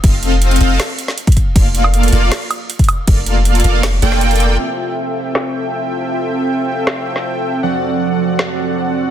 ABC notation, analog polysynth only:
X:1
M:4/4
L:1/8
Q:1/4=158
K:F
V:1 name="Analog polysynth"
[CFA_ef]3 [CFAef] z4 | [B,FAdf]3 [B,FAdf] z4 | [B,FAdf]3 [B,FAdf] z [B,FAdg]3 | [CFAeg]8- |
[CFAeg]8 | [F,C^FAd^f]8 |]